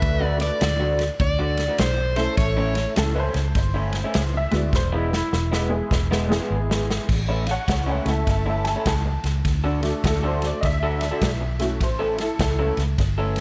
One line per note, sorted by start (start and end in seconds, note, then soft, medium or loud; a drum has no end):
0.00 0.50 D2 medium
0.00 0.57 A3 medium
0.00 0.57 D4 medium
0.00 0.57 F#4 medium
0.00 0.58 B4 medium
0.00 0.25 E5 medium
0.00 kick loud
0.00 ride medium
0.20 0.38 D3 medium
0.20 0.39 A3 medium
0.20 0.39 D4 medium
0.20 0.40 F#4 medium
0.25 0.37 D5 medium
0.40 1.20 D5 medium
0.40 muted clean electric guitar stroke soft
0.40 snare soft
0.40 ride medium
0.61 1.09 D2 medium
0.61 muted clean electric guitar stroke soft
0.61 snare loud
0.61 ride medium
0.80 1.03 D3 medium
0.80 1.03 A3 medium
0.80 1.02 D4 medium
0.80 1.02 F#4 medium
0.99 snare soft
0.99 ride medium
1.20 1.67 D2 medium
1.20 1.79 D5 medium
1.20 muted clean electric guitar stroke soft
1.20 kick loud
1.20 ride medium
1.39 1.61 D3 medium
1.39 1.61 A3 medium
1.39 1.61 D4 medium
1.39 1.61 F#4 medium
1.57 snare soft
1.57 ride medium
1.68 1.85 D3 medium
1.68 1.85 A3 medium
1.68 1.85 D4 medium
1.68 1.85 F#4 medium
1.78 2.26 B1 medium
1.78 2.16 C5 medium
1.78 snare loud
1.78 ride medium
1.98 muted clean electric guitar stroke soft
2.16 2.92 A3 medium
2.16 2.93 C#4 medium
2.16 2.93 E4 medium
2.16 2.93 A4 medium
2.16 2.37 C5 medium
2.16 snare soft
2.16 ride medium
2.37 2.85 A1 medium
2.37 2.93 C#5 medium
2.37 kick loud
2.37 snare soft
2.37 ride medium
2.57 2.74 A2 medium
2.57 2.74 A3 medium
2.57 2.75 C#4 medium
2.57 2.75 E4 medium
2.75 muted clean electric guitar stroke soft
2.75 snare soft
2.75 ride medium
2.96 3.27 C#2 medium
2.96 3.30 A3 medium
2.96 3.30 C#4 medium
2.96 3.31 E4 medium
2.96 3.31 A4 medium
2.96 3.17 A4 medium
2.96 muted clean electric guitar stroke soft
2.96 snare loud
2.96 ride medium
3.15 3.38 A2 medium
3.15 3.38 A3 medium
3.15 3.38 C#4 medium
3.15 3.38 E4 medium
3.15 3.21 B4 medium
3.20 4.32 C5 medium
3.34 3.52 C#2 medium
3.34 snare soft
3.34 ride medium
3.55 4.03 G1 medium
3.55 muted clean electric guitar stroke soft
3.55 kick loud
3.55 snare soft
3.55 ride medium
3.74 3.97 A2 medium
3.74 3.97 A3 medium
3.74 3.97 C#4 medium
3.74 3.96 E4 medium
3.93 snare soft
3.93 ride medium
4.04 4.21 A2 medium
4.04 4.21 A3 medium
4.04 4.21 C#4 medium
4.04 4.20 E4 medium
4.14 4.45 C#2 medium
4.14 snare loud
4.14 ride medium
4.34 4.55 E5 medium
4.34 muted clean electric guitar stroke soft
4.51 4.70 D2 medium
4.51 4.71 G#3 medium
4.51 4.71 B3 medium
4.51 4.72 E4 medium
4.51 4.72 F#4 medium
4.51 snare soft
4.51 ride medium
4.57 4.74 D5 medium
4.73 5.21 E1 medium
4.73 4.94 C5 medium
4.73 kick loud
4.73 snare medium
4.92 5.10 E3 medium
4.92 5.11 G#3 medium
4.92 5.11 B3 medium
4.92 5.11 E4 medium
4.92 5.13 E4 medium
5.12 6.87 E4 medium
5.12 muted clean electric guitar stroke soft
5.12 snare medium
5.33 5.80 E1 medium
5.33 muted clean electric guitar stroke soft
5.33 snare soft
5.52 5.74 E3 medium
5.52 5.74 G#3 medium
5.52 5.74 B3 medium
5.52 5.73 E4 medium
5.52 snare medium
5.69 5.89 G#3 medium
5.69 5.89 B3 medium
5.69 5.89 E4 medium
5.69 5.89 G#4 medium
5.91 6.39 E1 medium
5.91 muted clean electric guitar stroke soft
5.91 kick medium
5.91 snare medium
6.11 6.33 E3 medium
6.11 6.33 G#3 medium
6.11 6.33 B3 medium
6.11 6.33 E4 medium
6.11 snare medium
6.28 7.05 G#3 medium
6.28 7.05 B3 medium
6.28 7.05 E4 medium
6.28 7.05 G#4 medium
6.28 snare medium
6.40 6.57 E3 medium
6.40 6.57 G#3 medium
6.40 6.56 B3 medium
6.40 6.56 E4 medium
6.50 6.98 G#1 medium
6.70 muted clean electric guitar stroke soft
6.70 snare medium
6.91 snare medium
7.09 7.56 A1 medium
7.09 kick medium
7.09 snare soft
7.09 crash medium
7.28 7.46 A2 medium
7.28 7.46 A3 medium
7.28 7.46 C#4 medium
7.28 7.46 E4 medium
7.47 7.51 F5 medium
7.47 muted clean electric guitar stroke soft
7.47 snare soft
7.47 ride medium
7.51 7.68 C#5 medium
7.51 7.69 F#5 medium
7.68 7.98 C#2 medium
7.68 7.88 C#5 medium
7.68 7.89 F#5 medium
7.68 muted clean electric guitar stroke soft
7.68 kick medium
7.68 snare medium
7.68 ride medium
7.86 8.09 A2 medium
7.86 8.09 A3 medium
7.86 8.09 C#4 medium
7.86 8.09 E4 medium
7.90 8.07 C#5 medium
7.90 8.09 F#5 medium
8.05 8.23 C#2 medium
8.05 8.81 A3 medium
8.05 8.82 C#4 medium
8.05 8.82 E4 medium
8.05 8.82 A4 medium
8.05 snare soft
8.05 ride medium
8.10 8.27 E5 medium
8.10 8.28 A5 medium
8.27 8.75 G1 medium
8.27 8.47 E5 medium
8.27 8.48 A5 medium
8.27 muted clean electric guitar stroke soft
8.27 kick medium
8.27 snare soft
8.27 ride medium
8.46 8.68 A2 medium
8.46 8.68 A3 medium
8.46 8.68 C#4 medium
8.46 8.68 E4 medium
8.46 8.67 E5 medium
8.50 8.67 A5 medium
8.64 8.69 G#5 medium
8.64 snare soft
8.64 ride medium
8.69 9.25 A5 medium
8.76 8.92 A2 medium
8.76 8.92 A3 medium
8.76 8.92 C#4 medium
8.76 8.92 E4 medium
8.86 9.16 C#2 medium
8.86 kick medium
8.86 snare loud
8.86 ride medium
9.05 muted clean electric guitar stroke soft
9.24 9.41 C#2 medium
9.24 snare soft
9.24 ride medium
9.45 9.92 D2 medium
9.45 kick medium
9.45 snare soft
9.45 ride medium
9.64 9.82 D3 medium
9.64 9.82 D4 medium
9.64 9.82 F#4 medium
9.64 9.83 A4 medium
9.82 10.58 A3 medium
9.82 10.59 D4 medium
9.82 10.59 F#4 medium
9.82 10.05 A4 medium
9.82 muted clean electric guitar stroke soft
9.82 snare soft
9.82 ride medium
10.04 10.51 D2 medium
10.04 10.24 A4 medium
10.04 muted clean electric guitar stroke soft
10.04 kick medium
10.04 snare medium
10.04 ride medium
10.23 10.46 D3 medium
10.23 10.45 D4 medium
10.23 10.45 F#4 medium
10.23 10.45 A4 medium
10.23 10.44 C5 medium
10.42 snare soft
10.42 ride medium
10.46 10.64 D5 medium
10.61 11.10 D2 medium
10.61 10.65 D#5 medium
10.61 muted clean electric guitar stroke soft
10.61 kick medium
10.61 snare soft
10.61 ride medium
10.65 11.78 E5 medium
10.83 11.05 D3 medium
10.83 11.05 D4 medium
10.83 11.04 F#4 medium
10.83 11.04 A4 medium
11.01 snare soft
11.01 ride medium
11.11 11.28 D3 medium
11.11 11.28 D4 medium
11.11 11.28 F#4 medium
11.11 11.27 A4 medium
11.21 11.81 B1 medium
11.21 kick medium
11.21 snare loud
11.21 ride medium
11.41 muted clean electric guitar stroke soft
11.59 11.79 A3 medium
11.59 11.79 C#4 medium
11.59 11.79 E4 medium
11.59 11.79 F#4 medium
11.59 snare soft
11.59 ride medium
11.81 12.28 A1 medium
11.81 12.01 C5 medium
11.81 kick medium
11.81 snare soft
11.81 ride medium
11.99 12.17 A3 medium
11.99 12.17 C#4 medium
11.99 12.18 E4 medium
11.99 12.18 A4 medium
11.99 12.20 A4 medium
12.18 12.76 E4 medium
12.18 12.78 A4 medium
12.18 muted clean electric guitar stroke soft
12.18 snare soft
12.18 ride medium
12.39 12.70 C#2 medium
12.39 muted clean electric guitar stroke soft
12.39 kick medium
12.39 snare loud
12.39 ride medium
12.59 12.81 A3 medium
12.59 12.81 C#4 medium
12.59 12.81 E4 medium
12.59 12.81 A4 medium
12.77 12.94 C#2 medium
12.77 snare soft
12.77 ride medium
12.98 13.40 G1 medium
12.98 muted clean electric guitar stroke soft
12.98 kick medium
12.98 snare soft
12.98 ride medium
13.18 13.40 A3 medium
13.18 13.40 C#4 medium
13.18 13.40 E4 medium
13.18 13.40 A4 medium
13.36 snare soft
13.36 ride medium